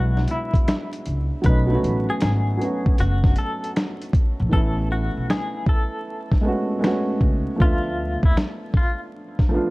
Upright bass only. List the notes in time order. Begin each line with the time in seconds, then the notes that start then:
Already playing: B1
1.07 C#2
1.45 B1
1.83 A1
2.22 G#1
2.99 F#1
4.40 A#1
4.53 A1
5.17 B1
7.21 C#2
7.60 D2
8.23 D2